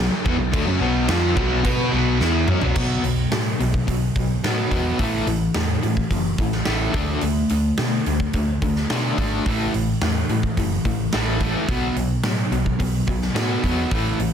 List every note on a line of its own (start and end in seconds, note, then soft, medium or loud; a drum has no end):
0.00 0.11 B1 medium
0.00 0.10 B2 medium
0.00 0.12 F#3 medium
0.10 muted distorted electric guitar stroke medium
0.10 muted overdriven electric guitar stroke medium
0.24 0.37 E2 medium
0.24 0.38 E3 loud
0.24 0.38 B3 loud
0.24 kick loud
0.38 0.52 B1 medium
0.38 0.53 B2 medium
0.38 0.53 F#3 medium
0.53 0.65 D2 loud
0.53 0.66 D3 medium
0.53 0.66 A3 loud
0.53 kick loud
0.53 crash medium
0.66 0.79 F#2 medium
0.66 0.80 F#3 medium
0.66 0.81 C#4 loud
0.79 1.06 B1 loud
0.79 1.08 B2 medium
0.79 1.08 F#3 medium
0.79 1.08 B3 medium
1.07 1.34 F2 medium
1.07 1.35 F3 medium
1.07 1.35 C4 medium
1.07 1.36 F4 loud
1.07 snare loud
1.07 crash medium
1.36 1.63 B1 medium
1.36 1.63 B2 medium
1.36 1.63 F#3 medium
1.36 1.62 B3 loud
1.36 kick medium
1.63 1.91 B2 medium
1.63 1.91 B3 medium
1.63 1.91 F#4 medium
1.63 1.92 B4 medium
1.63 kick medium
1.63 crash medium
1.91 2.18 B1 medium
1.91 2.19 B2 medium
1.91 2.19 F#3 loud
1.91 2.19 B3 loud
2.19 2.46 E2 medium
2.19 2.47 E3 loud
2.19 2.47 B3 loud
2.19 2.48 E4 loud
2.19 snare medium
2.48 2.61 F#2 medium
2.48 2.61 F#3 medium
2.48 2.62 C#4 loud
2.48 mid tom medium
2.61 2.75 B1 medium
2.61 2.75 B2 medium
2.61 2.75 F#3 medium
2.61 floor tom medium
2.76 2.96 B1 medium
2.76 3.02 B2 medium
2.76 3.03 F#3 medium
2.76 3.03 B3 medium
2.76 kick medium
2.76 crash loud
3.04 3.24 B1 medium
3.04 3.29 B2 medium
3.04 3.29 F#3 medium
3.04 open hi-hat medium
3.32 3.52 A2 medium
3.32 3.57 B2 medium
3.32 3.57 F#3 medium
3.32 snare loud
3.32 open hi-hat medium
3.60 3.80 B1 medium
3.60 3.85 B2 medium
3.60 3.85 F#3 medium
3.60 open hi-hat medium
3.74 kick medium
3.87 4.08 B1 medium
3.87 4.13 B2 medium
3.87 4.13 F#3 medium
3.87 kick medium
3.87 open hi-hat medium
4.16 4.36 B1 medium
4.16 4.41 B2 medium
4.16 4.41 F#3 medium
4.16 kick medium
4.16 open hi-hat medium
4.43 4.64 A2 medium
4.43 4.70 B2 medium
4.43 4.70 F#3 loud
4.43 4.71 B3 loud
4.43 snare loud
4.43 open hi-hat medium
4.71 4.92 E2 medium
4.71 4.98 B2 medium
4.71 4.98 F#3 medium
4.71 4.98 B3 medium
4.71 kick medium
4.71 open hi-hat medium
4.99 5.19 A1 medium
4.99 5.25 A2 medium
4.99 5.26 E3 medium
4.99 5.26 A3 medium
4.99 kick loud
4.99 open hi-hat medium
5.26 5.47 A1 medium
5.26 5.53 A2 medium
5.26 5.53 E3 medium
5.26 open hi-hat medium
5.54 5.75 E2 medium
5.54 5.80 A2 medium
5.54 5.81 E3 medium
5.54 snare loud
5.54 open hi-hat medium
5.83 6.08 A2 medium
5.83 6.04 A2 medium
5.83 6.08 E3 medium
5.83 open hi-hat soft
5.97 kick medium
6.11 6.31 F#1 medium
6.11 6.37 A2 medium
6.11 6.37 E3 medium
6.11 kick medium
6.11 open hi-hat medium
6.38 6.59 A1 medium
6.38 6.64 A2 medium
6.38 6.65 E3 medium
6.38 kick medium
6.38 open hi-hat medium
6.52 snare soft
6.65 6.87 A1 medium
6.65 6.93 A2 medium
6.65 6.93 E3 medium
6.65 6.94 A3 medium
6.65 snare loud
6.65 open hi-hat medium
6.94 7.15 D2 medium
6.94 7.21 D3 medium
6.94 7.21 A3 medium
6.94 7.21 D4 medium
6.94 kick loud
6.94 open hi-hat medium
7.21 7.43 D2 medium
7.21 7.48 D3 medium
7.21 7.48 A3 medium
7.21 open hi-hat medium
7.49 7.71 D2 medium
7.49 7.76 D3 medium
7.49 7.76 A3 medium
7.49 open hi-hat medium
7.77 7.98 B2 medium
7.77 8.04 D3 medium
7.77 8.04 A3 medium
7.77 snare loud
7.77 open hi-hat medium
8.06 8.26 D2 medium
8.06 8.32 D3 medium
8.06 8.32 A3 medium
8.06 open hi-hat medium
8.20 kick medium
8.33 8.54 D2 medium
8.33 8.60 D3 medium
8.33 8.60 A3 medium
8.33 kick medium
8.33 open hi-hat medium
8.62 8.82 D2 medium
8.62 8.87 D3 medium
8.62 8.87 A3 medium
8.62 kick medium
8.62 open hi-hat medium
8.76 snare soft
8.90 9.10 B2 medium
8.90 9.16 D3 medium
8.90 9.17 A3 medium
8.90 9.17 D4 loud
8.90 snare loud
8.90 open hi-hat medium
9.18 9.38 G#1 medium
9.18 9.44 D3 medium
9.18 9.44 A3 loud
9.18 9.45 D4 loud
9.18 kick medium
9.18 open hi-hat soft
9.46 9.66 A1 medium
9.46 9.72 A2 medium
9.46 9.72 E3 loud
9.46 9.73 A3 medium
9.46 kick loud
9.46 open hi-hat medium
9.74 9.94 A1 medium
9.74 9.99 A2 medium
9.74 9.99 E3 medium
9.74 open hi-hat medium
10.01 10.22 E2 medium
10.01 10.27 A2 medium
10.01 10.27 E3 medium
10.01 snare loud
10.01 open hi-hat medium
10.29 10.49 A2 medium
10.29 10.54 A2 medium
10.29 10.55 E3 medium
10.29 open hi-hat medium
10.43 kick medium
10.57 10.77 F#1 medium
10.57 10.82 A2 medium
10.57 10.83 E3 medium
10.57 kick medium
10.57 open hi-hat medium
10.85 11.05 A1 medium
10.85 11.10 A2 medium
10.85 11.10 E3 medium
10.85 kick medium
10.85 open hi-hat medium
11.12 11.53 A1 medium
11.12 11.40 A2 medium
11.12 11.40 E3 medium
11.12 11.40 A3 medium
11.12 snare loud
11.12 open hi-hat medium
11.40 11.67 A2 medium
11.40 11.67 E3 medium
11.40 11.68 A3 medium
11.40 kick medium
11.40 open hi-hat soft
11.68 11.89 B1 medium
11.68 11.95 B2 medium
11.68 11.95 F#3 medium
11.68 11.95 B3 loud
11.68 kick loud
11.68 open hi-hat medium
11.96 12.16 B1 medium
11.96 12.22 B2 medium
11.96 12.22 F#3 medium
11.96 open hi-hat medium
12.23 12.44 A2 medium
12.23 12.49 B2 medium
12.23 12.50 F#3 medium
12.23 snare loud
12.23 open hi-hat medium
12.51 12.71 B1 medium
12.51 12.77 B2 medium
12.51 12.77 F#3 medium
12.51 open hi-hat soft
12.66 kick medium
12.80 13.00 B1 medium
12.80 13.05 B2 medium
12.80 13.06 F#3 medium
12.80 kick medium
12.80 open hi-hat medium
13.07 13.28 B1 medium
13.07 13.33 B2 medium
13.07 13.33 F#3 medium
13.07 kick medium
13.07 open hi-hat medium
13.22 snare soft
13.34 13.55 A2 medium
13.34 13.61 B2 medium
13.34 13.62 F#3 medium
13.34 13.62 B3 medium
13.34 snare loud
13.34 open hi-hat medium
13.63 13.84 E2 medium
13.63 13.90 B2 medium
13.63 13.90 F#3 medium
13.63 13.90 B3 medium
13.63 kick medium
13.63 open hi-hat medium
13.90 14.12 A1 medium
13.90 14.17 A2 medium
13.90 14.17 E3 medium
13.90 14.18 A3 loud
13.90 kick loud
13.90 open hi-hat medium
14.19 14.33 A1 medium
14.19 14.33 A2 medium
14.19 14.33 E3 medium
14.19 open hi-hat medium